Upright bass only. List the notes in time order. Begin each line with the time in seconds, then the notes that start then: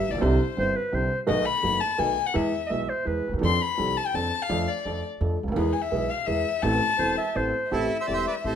0.09 A1
0.13 A#1
0.18 B1
0.22 C2
0.58 G1
0.93 C2
1.29 B1
1.64 F#1
1.99 B1
2.35 E2
2.71 B1
3.07 E2
3.29 D2
3.33 D#2
3.39 E2
3.43 F2
3.79 C2
4.14 F2
4.50 F2
4.86 F2
5.21 F2
5.43 C#2
5.48 D2 D#2
5.56 E2
5.92 B1
6.28 E2
6.63 A1
6.99 E1
7.36 A1
7.72 A1
8.08 E1
8.45 A1